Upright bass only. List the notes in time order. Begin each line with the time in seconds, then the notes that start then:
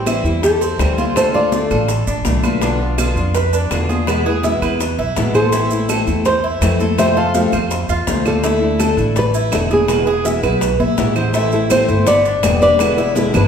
Already playing: A1
0.24 E2
0.79 D2
1.71 A1
2.07 A1
2.25 B1
3.16 F2
3.71 E2
4.62 E2
4.98 B1
5.17 A1
6.07 E2
6.61 F2
7.53 F2
7.89 E2
8.07 D2
8.97 A1
9.52 E1
10.43 B1
10.80 B1
10.98 A1
11.88 G1
12.43 E1
13.35 G1